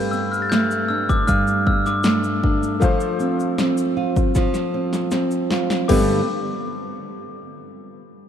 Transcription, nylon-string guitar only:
Already playing: G2 G3 G4
0.13 B3
0.52 A3
0.90 D4
1.28 G2
1.66 B3
2.05 A3
2.43 D4
2.81 F3
3.20 C4
3.59 C4
3.97 F4
4.36 F3
4.74 C4
5.12 C4
5.52 F4
5.89 G2 D3 G3 B3 D4 A4

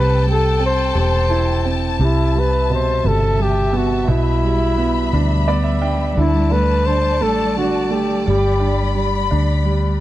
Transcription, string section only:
Already playing: A4 G5 A5
2.01 E5
4.09 G3 B5
6.18 D5 A5
8.27 B5

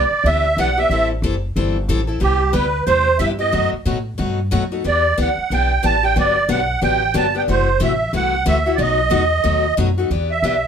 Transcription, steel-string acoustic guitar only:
0.26 E3 B3 D4 G4
0.58 E3 B3 D4 G4
0.78 B3 D4 G4
0.91 E3 G3 C4 E4 A4
1.23 E3 G3 C4 E4 A4
1.56 E3 G3 C4 E4 A4
1.89 E3 G3 C4 E4 A4
2.07 C4 E4 A4
2.20 C3 G3 B3 E4 G4
2.53 C3 G3 B3 E4 G4
2.87 C3 G3 B3 E4 G4
3.19 C3 G3 B3 E4 G4
3.39 B3 E4 G4
3.52 B2 F#3 A3 D#4 F#4
3.85 B2 F#3 A3 D#4 F#4
4.18 B2 F#3 A3 D#4 F#4
4.51 B2 F#3 A3 D#4 F#4
4.72 A3 D#4 F#4
4.84 E3 B3 D4 G4
5.17 E3 B3 D4 G4
5.51 E3 B3 D4 G4
5.83 E3 B3 D4 G4
6.03 B3 D4 G4
6.16 D3 F#3 B3 D4 G4
6.49 D3 F#3 B3 D4 G4
6.81 D3 F#3 B3 D4 G4
7.14 D3 F#3 B3 D4 G4
7.34 B3 D4 G4
7.48 C3 E3 A3 E4 F#4
7.80 C3 E3 A3 E4 F#4
8.13 C3 E3 A3 E4 F#4
8.46 C3 E3 A3 E4 F#4
8.66 A3 E4 F#4
8.78 B2 F#3 A3 D#4 F#4
9.10 B2 F#3 A3 D#4 F#4
9.44 B2 F#3 A3 D#4 F#4
9.77 B2 F#3 A3 D#4 F#4
9.98 A3 D#4 F#4
10.11 E3 B3 D4 G4
10.44 E3 B3 D4 G4

